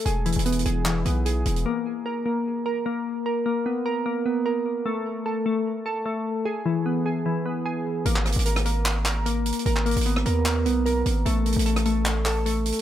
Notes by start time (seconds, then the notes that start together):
0.05 E1 G#4, closed hi-hat
0.26 E3, closed hi-hat
0.32 E1, closed hi-hat
0.39 closed hi-hat
0.46 B3, closed hi-hat
0.52 closed hi-hat
0.59 closed hi-hat
0.65 E1 G#4, closed hi-hat
0.86 E3, clap, closed hi-hat
1.05 B1 B3, closed hi-hat
1.26 G#4, closed hi-hat
1.46 E1, closed hi-hat
1.56 closed hi-hat
1.66 A#3
2.06 A#4
2.26 A#3
2.66 A#4
2.86 A#3
3.26 A#4
3.46 A#3
3.66 B3
3.86 A#4
4.06 A#3
4.26 B3
4.46 A#4
4.86 A3
5.26 A4
5.46 A3
5.86 A4
6.06 A3
6.45 G#4
6.66 E3
6.86 B3
7.06 G#4
7.26 E3
7.46 B3
7.66 G#4
8.06 G#1 A#3, closed hi-hat
8.16 clap
8.26 cross-stick, closed hi-hat
8.32 G#1, closed hi-hat
8.39 closed hi-hat
8.46 A#4, closed hi-hat
8.56 cross-stick, closed hi-hat
8.65 A#3, closed hi-hat
8.86 clap, closed hi-hat
9.06 A#4, clap, closed hi-hat
9.26 A#3, closed hi-hat
9.46 closed hi-hat
9.52 closed hi-hat
9.59 closed hi-hat
9.66 G#1 A#4, closed hi-hat
9.76 clap
9.86 A#3, closed hi-hat
9.91 closed hi-hat
9.96 G#1, closed hi-hat
10.01 closed hi-hat
10.06 B3, closed hi-hat
10.16 cross-stick
10.26 D#2 A#4, closed hi-hat
10.46 A#3, clap, closed hi-hat
10.66 B1 B3, closed hi-hat
10.86 A#4, closed hi-hat
11.06 G#1, closed hi-hat
11.26 A1 A3, closed hi-hat
11.46 closed hi-hat
11.52 A1, closed hi-hat
11.59 closed hi-hat
11.66 A4, closed hi-hat
11.76 cross-stick, closed hi-hat
11.85 A3, closed hi-hat
12.06 clap, closed hi-hat
12.26 A4, clap, closed hi-hat
12.46 A3, closed hi-hat
12.66 closed hi-hat
12.72 closed hi-hat